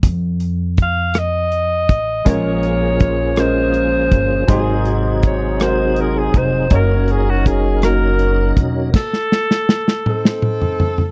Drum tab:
CC |------------|------------|------------|------------|
HH |x-x-x-x-x-x-|x-x-x-x-x-x-|x-x-x-x-x-x-|x-x-x-x-x-x-|
SD |------r-----|------r-----|----r-r-----|------r-----|
T2 |------------|------------|------------|------------|
FT |------------|------------|------------|------------|
BD |o---o-----o-|o---o-----o-|o---o-----o-|o---o-----o-|

CC |x-----------|
HH |------------|
SD |oooooo-o----|
T2 |------o-o---|
FT |---------ooo|
BD |o-----------|